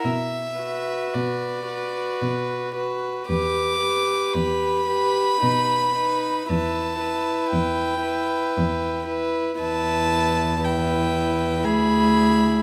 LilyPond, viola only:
\new Staff \with { instrumentName = "Viola" } { \time 3/4 \key e \dorian \tempo 4 = 57 r8 fis'4 fis'4 fis'8 | g'8 g'4 g'8 dis'8 dis'8 | e'8 e'4 e'4 e'8 | \key e \minor e'4 e'4 e'4 | }